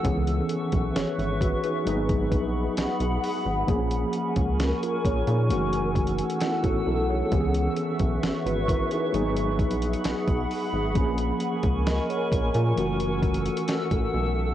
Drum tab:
HH |x-x-x-x-x-x-x-x-x-x-x---x-x-o---|x-x-x-x-x-x-x-x-x-x-xxxxx-x-----|x-x-x-x-x-x-x-x-x-x-xxxxx-x-o---|x-x-x-x-x-x-x-x-x-x-xxxxx-x-----|
SD |--------o---------------o-------|--------o---------------o-------|--------o---------------o-------|--------o---------------o-------|
BD |o-----o-----o-----o-o-----------|o-----o-----o-------o-----o-----|o-----o-----o-------o-----o-----|o-----o-----o-------o-----o-----|